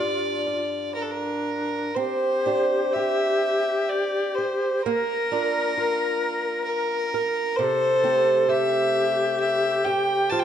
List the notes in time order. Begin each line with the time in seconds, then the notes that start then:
Already playing: G2 F4 G4 D5
0.00 D4
0.47 F4
0.95 D4 A#4
1.02 A4
1.11 A#4
1.95 C4 G4 C5
2.46 D4 G4 C5
2.93 G4 E5
3.89 D5
4.35 C5
4.82 A#3 A#4
5.32 D4 F4 A#4
5.77 F4
6.64 A#4
7.14 A#4
7.56 C3 A4 C5
8.03 A3 C4 G4
8.49 A3 G4 E5
9.39 E5
9.85 G4 G5
10.30 F3 F4 A5
10.39 G5